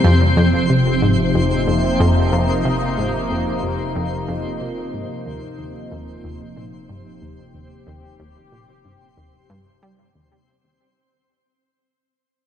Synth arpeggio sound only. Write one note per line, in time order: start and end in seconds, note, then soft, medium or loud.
0.04 0.35 F2 loud
0.37 0.49 F2 medium
0.70 0.90 C3 medium
1.02 1.14 G#2 medium
1.35 1.47 F2 medium
1.67 1.88 F2 medium
2.00 2.30 F2 medium
2.32 2.45 F2 medium
2.65 2.86 C3 medium
2.98 3.10 G#2 medium
3.31 3.43 F2 medium
3.63 3.83 F2 medium
3.96 4.26 F2 medium
4.28 4.40 F2 medium
4.61 4.81 C3 medium
4.94 5.06 G#2 medium
5.26 5.38 D#2 medium
5.59 5.79 D#2 medium
5.91 6.22 D#2 medium
6.24 6.36 D#2 medium
6.57 6.77 A#2 medium
6.89 7.01 G2 medium
7.22 7.34 D#2 medium
7.54 7.75 D#2 medium
7.87 8.17 D#2 medium
8.20 8.32 D#2 medium
8.52 8.73 A#2 medium
8.85 8.97 G2 medium
9.17 9.30 D#2 medium
9.50 9.62 G2 medium
9.83 10.03 G3 medium
10.15 10.36 D#2 medium